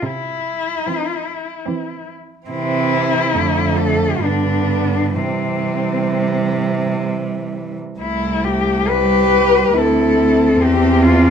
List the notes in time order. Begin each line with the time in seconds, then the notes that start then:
0.02 C3 E4
0.87 E3 C4
1.66 E3 C4
2.47 C3 E3 C4 E4
3.34 F2 D3 A3
3.77 A4
4.21 G2 D3 B3 D4
5.16 C3 E3 G3 C4
8.00 C2 A3 E4
8.44 G4
8.88 G3 G4 B4
9.74 D2 C4 E4 A4
10.56 E2 C4
10.62 G4
11.02 F4